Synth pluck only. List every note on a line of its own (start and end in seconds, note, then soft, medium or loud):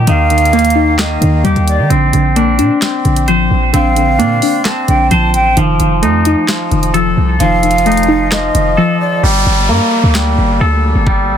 0.00 0.76 G3 medium
0.08 0.30 D#3 medium
0.31 1.20 D#3 medium
0.53 1.68 A#3 medium
0.75 1.90 D#4 loud
1.21 1.90 D#3 medium
1.44 1.90 G3 medium
1.90 2.12 D3 medium
2.14 3.04 D3 medium
2.36 3.51 A#3 medium
2.59 3.74 D4 loud
3.05 3.72 D3 medium
3.29 4.43 F3 medium
3.73 3.95 D3 medium
3.96 4.88 D3 medium
4.19 5.34 A#3 medium
4.43 5.57 D4 loud
4.89 5.57 D3 medium
5.11 5.57 F3 medium
5.57 5.79 D#3 medium
5.80 6.70 D#3 medium
6.02 7.17 A3 medium
6.26 7.40 D#4 loud
6.71 7.40 D#3 medium
6.94 8.09 F3 medium
7.41 7.62 D#3 medium
7.63 8.54 D#3 medium
7.86 9.00 A3 medium
8.08 9.23 D#4 loud
8.55 9.23 D#3 medium
8.78 9.23 F3 medium